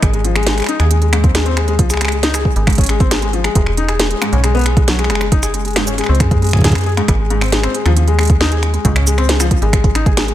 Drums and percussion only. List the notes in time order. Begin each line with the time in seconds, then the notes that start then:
0.02 finger snap, kick, closed hi-hat
0.14 closed hi-hat
0.25 closed hi-hat
0.36 finger snap, closed hi-hat
0.43 snare, closed hi-hat
0.47 closed hi-hat
0.50 closed hi-hat
0.58 finger snap, closed hi-hat
0.60 finger snap, closed hi-hat
0.62 finger snap, closed hi-hat
0.64 finger snap, closed hi-hat
0.66 finger snap, closed hi-hat
0.69 closed hi-hat
0.80 finger snap, closed hi-hat
0.91 closed hi-hat
1.02 closed hi-hat
1.13 finger snap, closed hi-hat
1.24 kick, closed hi-hat
1.35 finger snap, snare, closed hi-hat
1.46 closed hi-hat
1.57 finger snap, closed hi-hat
1.68 closed hi-hat
1.79 kick, closed hi-hat
1.90 finger snap, closed hi-hat, cabasa
1.94 finger snap
1.97 finger snap
2.01 finger snap, closed hi-hat
2.05 finger snap
2.08 finger snap, closed hi-hat
2.23 snare, closed hi-hat
2.34 finger snap, closed hi-hat, cabasa
2.45 kick
2.56 closed hi-hat
2.67 finger snap, kick, closed hi-hat
2.70 closed hi-hat
2.73 closed hi-hat
2.75 closed hi-hat
2.78 kick, closed hi-hat
2.81 closed hi-hat
2.84 closed hi-hat
2.86 finger snap, closed hi-hat
2.89 closed hi-hat
3.00 kick, closed hi-hat
3.11 finger snap, snare, closed hi-hat
3.22 closed hi-hat
3.33 closed hi-hat
3.44 finger snap, closed hi-hat
3.55 kick, closed hi-hat
3.66 finger snap
3.77 closed hi-hat
3.88 finger snap, closed hi-hat
4.00 snare, closed hi-hat
4.11 closed hi-hat
4.22 finger snap, closed hi-hat
4.33 closed hi-hat
4.44 finger snap, closed hi-hat
4.55 closed hi-hat
4.57 closed hi-hat
4.59 closed hi-hat
4.61 closed hi-hat
4.64 finger snap, closed hi-hat
4.66 closed hi-hat
4.77 kick, closed hi-hat
4.88 snare, closed hi-hat
4.99 finger snap, closed hi-hat
5.04 finger snap
5.10 finger snap, closed hi-hat
5.15 finger snap
5.21 finger snap, closed hi-hat
5.32 kick, closed hi-hat
5.43 finger snap, closed hi-hat, cabasa
5.54 closed hi-hat
5.65 closed hi-hat
5.68 closed hi-hat
5.71 closed hi-hat
5.73 finger snap, snare, closed hi-hat
5.76 closed hi-hat
5.82 closed hi-hat
5.84 closed hi-hat
5.87 closed hi-hat, cabasa
5.98 finger snap, closed hi-hat
6.01 finger snap
6.04 finger snap
6.06 finger snap
6.15 closed hi-hat
6.20 finger snap, kick, closed hi-hat
6.31 kick, closed hi-hat
6.42 closed hi-hat
6.44 closed hi-hat
6.47 closed hi-hat
6.49 closed hi-hat
6.51 finger snap, kick, closed hi-hat
6.56 kick, closed hi-hat
6.59 kick, closed hi-hat
6.61 kick
6.64 kick, snare, closed hi-hat
6.67 kick, closed hi-hat
6.70 kick, closed hi-hat
6.72 finger snap, kick, closed hi-hat
6.78 closed hi-hat
6.81 closed hi-hat
6.84 closed hi-hat
6.86 closed hi-hat
6.89 closed hi-hat
6.92 closed hi-hat
6.95 finger snap, closed hi-hat
6.97 closed hi-hat
7.08 finger snap, kick, closed hi-hat
7.30 closed hi-hat
7.41 finger snap, closed hi-hat
7.44 closed hi-hat
7.46 closed hi-hat
7.48 closed hi-hat
7.50 snare, closed hi-hat
7.52 closed hi-hat
7.63 finger snap, closed hi-hat
7.74 closed hi-hat
7.86 finger snap, closed hi-hat
7.97 closed hi-hat
8.08 closed hi-hat
8.19 finger snap, closed hi-hat
8.21 closed hi-hat
8.23 closed hi-hat
8.25 closed hi-hat
8.27 closed hi-hat
8.30 kick, closed hi-hat
8.41 finger snap, snare
8.52 closed hi-hat
8.63 finger snap, closed hi-hat
8.74 closed hi-hat
8.85 kick, closed hi-hat
8.96 finger snap, closed hi-hat
9.07 closed hi-hat, cabasa
9.18 finger snap, closed hi-hat
9.29 snare, closed hi-hat
9.40 finger snap, closed hi-hat, cabasa
9.51 kick, closed hi-hat
9.62 closed hi-hat
9.73 finger snap, kick, closed hi-hat
9.84 kick, closed hi-hat
9.95 finger snap, closed hi-hat
10.06 kick, closed hi-hat
10.17 finger snap, snare, closed hi-hat
10.28 closed hi-hat